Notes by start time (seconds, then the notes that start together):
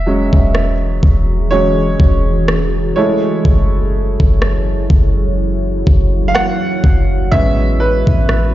Already playing: E1 E3 C#4 F#4 G#4 E5
0.06 F#3 G#3 C#4
0.33 E1, kick
0.55 cross-stick
1.03 E1, kick
1.51 F#3 G#3 C#4 C#5
2.00 E1, kick
2.48 cross-stick
2.96 F#3 G#3 A3 E4 C#5
3.45 F#1, kick
4.20 F#1, kick
4.42 cross-stick
4.90 F#1 F#4, kick
5.87 F#1, kick
6.28 F5
6.35 F#5, cross-stick
6.84 F#1, kick
7.32 A1 G#3 B3 C#4 E5, kick
7.80 B4
8.07 A1, kick
8.29 cross-stick